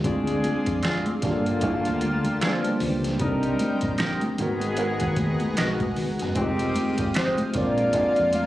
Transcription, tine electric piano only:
0.03 G#3 C4 D4 F4
0.08 G#4
1.22 G3 A#3 D4 F4
1.26 G4
1.33 A4
2.41 G3 A#3 D4 F4
2.45 B4
2.52 C5
3.19 G3 C4 D4 D#4
3.24 A4
3.30 A#4
4.38 G#3 A#3 D#4 F#4
4.42 B3 A#4
5.57 G#3 B3 D#4 F#4 B4
6.35 G#3 C4 D#4 F4 G4
7.53 G#3 C4 D4 F4 A#4

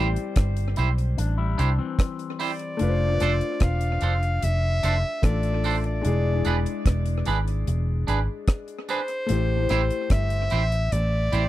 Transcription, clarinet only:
Already playing: C5
2.41 D5
3.63 F5
4.44 E5
5.25 D5
5.86 D5
8.90 C5
10.12 E5
10.93 D5

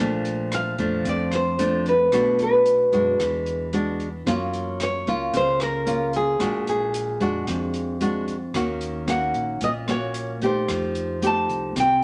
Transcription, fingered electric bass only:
Already playing: A#1
0.79 F2
1.05 F2
2.12 B1
2.92 F#2
3.20 E2
4.26 F#2
5.07 C#2
5.33 C#2
6.40 A#1
7.21 F2
7.47 F2
8.54 D#2
9.34 A#1
9.61 A#1
10.69 F2
11.49 C2
11.76 C2

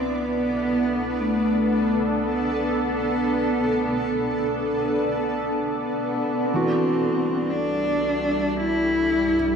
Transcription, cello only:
Already playing: C4
0.16 B3
1.20 A3
2.27 B3
5.93 B3
6.46 C4
7.50 D4
8.57 E4

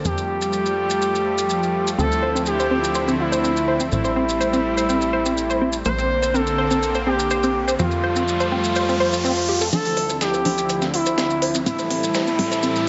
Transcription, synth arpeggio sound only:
1.98 C4
2.23 C5
2.35 C4
2.60 C5
2.71 C4
2.95 C5
3.08 C4
3.32 C5
3.44 C4
3.68 C5
3.80 C4
4.05 C5
4.16 C4
4.40 C5
4.53 C4
4.77 C5
4.89 C4
5.13 C5
5.26 C4
5.50 C5
5.61 C4
5.86 C5
5.98 C4
6.22 C5
6.34 C4
6.58 C5
6.71 C4
6.95 C5
7.07 C4
7.31 C5
7.44 C4
7.68 C5
7.79 C4
8.03 C5
8.16 C4
8.40 C5
8.52 C4
8.76 C5
8.89 C4
9.00 C5
9.13 F4
9.25 C4
9.49 G4
9.61 A4
9.73 C4
9.97 C5
10.10 C4
10.34 C5
10.45 C4
10.70 C5
10.82 C4
11.06 C5
11.18 C4
11.42 C5
11.55 C4
11.79 C5
11.90 C4
12.15 C5
12.27 C4
12.51 C5
12.63 C4

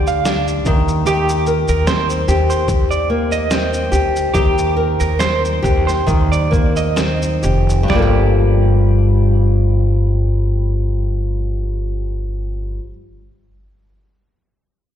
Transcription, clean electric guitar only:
0.08 F5
1.07 G4
1.69 A#4
1.87 C5
2.50 C5
2.91 D5
3.32 D#5
4.34 G4
5.00 A#4
5.19 C5
5.87 C5
6.32 D5
6.77 D#5
7.90 D5

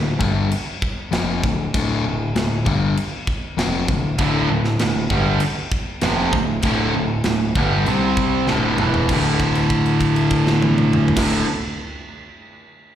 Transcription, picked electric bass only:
Already playing: D1
0.20 G1
1.13 F1
1.43 D1
1.75 D1
2.05 D1
2.35 D1
2.66 G1
3.58 F1
3.89 D1
4.19 D1
4.50 D1
4.81 D1
5.10 G1
6.02 F1
6.33 D1
6.63 D1
6.95 D1
7.26 D1
7.56 G1
7.87 C2
8.48 D1
8.78 E1
9.09 D1
11.17 D1

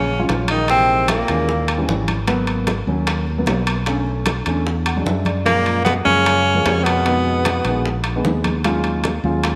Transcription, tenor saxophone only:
Already playing: C#4
0.51 D#4
0.70 C4
1.09 A#3
5.46 A#3
5.85 B3
6.05 C#4
6.83 B3

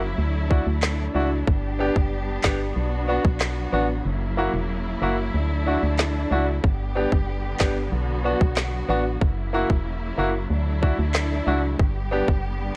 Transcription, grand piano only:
0.50 D4 E4 F#4
1.14 D4 E4 F#4
1.79 B3 D4 G4
2.43 B3 D4 G4
3.08 B3 D4 F#4
3.72 B3 D4 F#4
4.37 A#3 E4 F#4
5.02 A#3 E4 F#4
5.66 D4 E4 F#4
6.31 D4 E4 F#4
6.95 B3 D4 G4
7.60 B3 D4 G4
8.24 B3 D4 F#4
8.89 B3 D4 F#4
9.53 A#3 E4 F#4
10.18 A#3 E4 F#4
10.82 D4 E4 F#4
11.47 D4 E4 F#4
12.11 B3 D4 G4

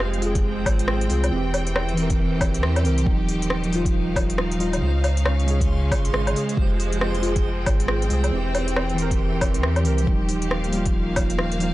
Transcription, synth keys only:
Already playing: G#3 F4 G4
0.18 G#3
0.22 F4
0.26 G#4
1.08 G#3 F4
1.12 G#4
1.28 E3 C4
1.36 G4
1.94 E3 C4
2.02 A#4
2.83 E3 C4 A#4
3.02 F3
3.06 G3 D#4
3.67 F3
3.71 G3
3.75 F4
4.57 F3 G3 F4
4.77 C#3
4.81 G#3 F4
5.43 C#3 G#3
5.51 G#4
6.33 C#3 G#3 G#4
6.53 G#3 F4
6.62 G4
7.18 G#3 F4
7.26 G#4
8.09 G#3 F4
8.13 G#4
8.28 E3
8.32 C4 G4
8.94 E3
8.98 C4
9.02 A#4
9.83 E3 C4
9.87 A#4
10.03 F3 G3
10.11 D#4
10.69 F3 G3
10.77 F4
11.59 F3 G3
11.63 F4

